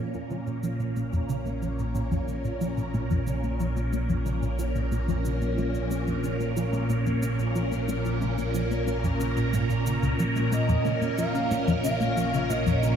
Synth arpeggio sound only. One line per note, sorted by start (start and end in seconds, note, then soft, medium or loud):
0.14 0.22 F2 medium
0.31 0.38 C#3 medium
0.47 0.55 A#2 medium
0.63 0.71 F3 medium
0.80 0.84 A#2 medium
0.96 1.04 A#2 loud
1.13 1.20 F2 medium
1.29 1.37 C#3 medium
1.46 1.53 A#2 medium
1.62 1.70 F3 medium
1.79 1.83 A#2 medium
1.95 2.03 A#2 medium
2.12 2.19 F2 loud
2.28 2.36 C#3 medium
2.45 2.52 A#2 medium
2.61 2.69 F3 medium
2.78 2.82 A#2 medium
2.94 3.02 A#2 loud
3.11 3.18 F2 loud
3.27 3.35 C#3 medium
3.44 3.51 A#2 medium
3.60 3.68 F3 medium
3.77 3.81 A#2 medium
3.93 4.01 A#2 medium
4.09 4.17 F2 loud
4.26 4.34 C#3 medium
4.43 4.50 A#2 medium
4.59 4.67 F3 medium
4.75 4.80 A#2 medium
4.92 5.00 A#2 loud
5.08 5.16 F2 medium
5.25 5.33 C#3 medium
5.41 5.49 A#2 medium
5.58 5.65 F3 medium
5.74 5.79 A#2 medium
5.91 5.98 A#2 loud
6.07 6.15 F2 loud
6.24 6.31 C#3 medium
6.40 6.48 A#2 medium
6.57 6.64 F3 medium
6.73 6.78 A#2 medium
6.90 6.97 A#2 loud
7.06 7.14 F2 loud
7.23 7.30 C#3 medium
7.39 7.47 A#2 medium
7.56 7.63 F3 medium
7.72 7.77 A#2 medium
7.88 7.96 A#2 loud
8.05 8.13 F2 loud
8.22 8.29 C#3 medium
8.38 8.46 A#2 medium
8.55 8.62 F3 medium
8.71 8.76 A#2 medium
8.87 8.95 A#2 medium
9.04 9.12 F2 loud
9.20 9.28 C#3 medium
9.37 9.45 A#2 medium
9.53 9.65 G#2 medium
9.70 9.75 A#2 medium
9.86 9.98 C#3 medium
10.03 10.14 C#2 loud
10.19 10.24 F3 medium
10.36 10.47 A#2 medium
10.52 10.60 A#2 loud
10.69 10.76 F2 loud
10.85 10.93 C#3 medium
11.02 11.09 A#2 medium
11.18 11.26 F3 medium
11.35 11.39 C#3 medium
11.51 11.59 A#2 medium
11.68 11.75 F2 loud
11.84 11.92 C#3 medium
12.01 12.08 A#2 medium
12.17 12.25 F3 medium
12.34 12.38 C#3 medium
12.50 12.58 A#2 loud
12.66 12.74 F2 loud
12.83 12.91 C#3 medium